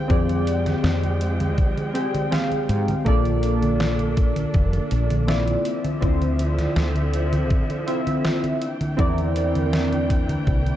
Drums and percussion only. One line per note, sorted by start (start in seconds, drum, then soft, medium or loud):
0.10 kick loud
0.10 closed hi-hat medium
0.10 high conga soft
0.29 closed hi-hat soft
0.29 high conga soft
0.47 closed hi-hat medium
0.66 snare soft
0.66 closed hi-hat soft
0.66 high conga medium
0.84 snare loud
0.84 closed hi-hat medium
0.84 high conga soft
1.03 closed hi-hat soft
1.03 high conga soft
1.21 closed hi-hat medium
1.40 closed hi-hat medium
1.40 high conga medium
1.58 kick loud
1.58 closed hi-hat medium
1.58 high conga soft
1.77 closed hi-hat soft
1.77 high conga soft
1.95 closed hi-hat loud
2.15 closed hi-hat medium
2.15 high conga medium
2.32 snare loud
2.32 closed hi-hat medium
2.32 high conga soft
2.52 closed hi-hat soft
2.52 high conga soft
2.69 closed hi-hat medium
2.88 closed hi-hat medium
2.88 high conga medium
3.06 kick loud
3.06 closed hi-hat medium
3.06 high conga soft
3.25 closed hi-hat soft
3.25 high conga soft
3.43 closed hi-hat medium
3.62 closed hi-hat soft
3.62 high conga soft
3.80 snare loud
3.80 closed hi-hat soft
3.80 high conga soft
3.99 closed hi-hat soft
3.99 high conga soft
4.17 kick loud
4.17 closed hi-hat medium
4.36 closed hi-hat medium
4.36 high conga medium
4.54 kick loud
4.54 closed hi-hat soft
4.54 high conga soft
4.73 closed hi-hat soft
4.73 high conga soft
4.91 closed hi-hat loud
5.10 closed hi-hat medium
5.10 high conga medium
5.28 snare loud
5.28 closed hi-hat soft
5.28 high conga soft
5.48 closed hi-hat soft
5.48 high conga soft
5.65 closed hi-hat medium
5.85 closed hi-hat soft
5.85 high conga medium
6.02 kick loud
6.02 closed hi-hat medium
6.02 high conga soft
6.22 closed hi-hat soft
6.22 high conga soft
6.39 closed hi-hat medium
6.59 snare soft
6.59 closed hi-hat soft
6.59 high conga medium
6.76 snare loud
6.76 closed hi-hat soft
6.76 high conga soft
6.96 closed hi-hat soft
6.96 high conga soft
7.14 closed hi-hat medium
7.33 closed hi-hat medium
7.33 high conga medium
7.50 kick loud
7.50 closed hi-hat soft
7.50 high conga soft
7.70 closed hi-hat soft
7.70 high conga soft
7.88 closed hi-hat medium
8.07 closed hi-hat medium
8.07 high conga medium
8.25 snare loud
8.25 closed hi-hat soft
8.25 high conga soft
8.44 closed hi-hat soft
8.44 high conga soft
8.62 closed hi-hat medium
8.81 closed hi-hat soft
8.81 high conga medium
8.99 kick loud
8.99 closed hi-hat medium
9.18 closed hi-hat soft
9.18 high conga soft
9.36 closed hi-hat medium
9.55 closed hi-hat medium
9.55 high conga medium
9.73 snare loud
9.73 closed hi-hat soft
9.73 high conga soft
9.93 closed hi-hat soft
9.93 high conga soft
10.10 kick loud
10.10 closed hi-hat medium
10.29 closed hi-hat medium
10.29 high conga medium
10.47 kick loud
10.47 closed hi-hat medium
10.47 high conga soft
10.66 closed hi-hat soft
10.66 high conga soft